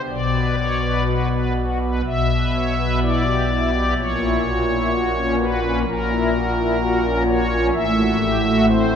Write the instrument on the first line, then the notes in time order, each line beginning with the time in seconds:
pipe organ
0.08 B1 B2 D5
0.34 B4
0.57 C#5
0.81 B4
1.05 F#4 B4
1.30 B4
1.56 F#4
1.80 B4
2.05 B1 B2 E5
2.30 B4
2.54 C#5
2.78 B4
3.01 E4 D5
3.24 G4
3.49 E4
3.74 G4
3.97 A#1 A#2 C#5
4.21 E4
4.45 F#4
4.69 E4
4.91 F#4
5.15 C#4
5.39 F#4 B4
5.62 C#4
5.85 A#1 A#2 A#4
6.09 E4
6.32 F#4
6.56 E4
6.79 F#4
7.03 C#4
7.27 F#4 C#5
7.51 C#4
7.73 A1 A2 E5
7.97 F#4
8.20 G4
8.44 F#4
8.67 C4 C5
8.91 F#3